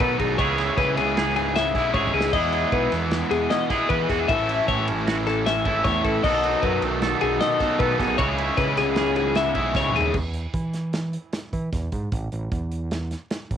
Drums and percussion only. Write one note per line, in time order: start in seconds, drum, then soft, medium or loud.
0.00 kick loud
0.00 ride loud
0.20 kick medium
0.20 ride medium
0.39 kick loud
0.39 ride loud
0.58 snare soft
0.58 ride medium
0.78 kick loud
0.78 ride medium
0.97 ride medium
1.17 snare loud
1.17 ride loud
1.36 ride medium
1.56 snare loud
1.56 ride loud
1.75 kick medium
1.75 snare soft
1.75 ride medium
1.94 kick loud
2.07 kick medium
2.21 snare loud
2.33 kick loud
2.33 ride loud
2.33 crash medium
2.53 ride medium
2.72 kick loud
2.72 ride medium
2.92 snare soft
2.92 ride medium
3.11 snare loud
3.11 ride medium
3.31 ride medium
3.51 snare loud
3.51 ride loud
3.70 kick medium
3.70 snare soft
3.70 ride medium
3.90 kick loud
3.90 ride loud
4.10 kick medium
4.10 snare soft
4.10 ride medium
4.29 kick loud
4.29 ride loud
4.49 ride medium
4.68 kick medium
4.68 ride medium
4.88 ride medium
5.07 snare loud
5.07 ride loud
5.27 snare soft
5.27 ride medium
5.46 snare loud
5.46 ride loud
5.65 kick medium
5.65 ride medium
5.85 kick loud
5.85 snare soft
5.85 ride medium
6.05 kick medium
6.05 ride medium
6.24 kick loud
6.24 crash loud
6.44 ride medium
6.63 kick loud
6.63 ride medium
6.82 ride medium
7.02 snare loud
7.02 ride loud
7.21 ride medium
7.40 snare loud
7.40 ride loud
7.60 kick medium
7.60 snare soft
7.60 ride medium
7.80 kick loud
7.80 ride loud
7.99 kick medium
7.99 snare soft
7.99 ride medium
8.19 kick loud
8.19 ride loud
8.38 ride medium
8.57 kick loud
8.57 snare soft
8.57 ride medium
8.77 snare soft
8.77 ride medium
8.96 snare loud
8.96 ride medium
9.16 ride medium
9.35 snare loud
9.35 ride medium
9.55 kick medium
9.55 ride medium
9.75 kick loud
9.75 snare medium
9.89 mid tom medium
10.01 floor tom loud
10.14 kick loud
10.14 crash medium
10.34 closed hi-hat medium
10.54 kick medium
10.54 closed hi-hat medium
10.74 snare soft
10.74 closed hi-hat medium
10.93 snare loud
10.93 closed hi-hat medium
11.13 closed hi-hat medium
11.33 snare loud
11.33 closed hi-hat medium
11.53 kick medium
11.53 closed hi-hat medium
11.73 kick medium
11.73 snare soft
11.73 closed hi-hat medium
11.92 kick medium
11.92 closed hi-hat medium
12.12 kick loud
12.12 closed hi-hat medium
12.32 closed hi-hat soft
12.52 kick medium
12.52 closed hi-hat medium
12.71 closed hi-hat medium
12.91 snare medium
12.91 closed hi-hat medium
13.11 snare soft
13.11 closed hi-hat medium
13.30 snare loud
13.30 closed hi-hat medium
13.51 kick medium
13.51 closed hi-hat medium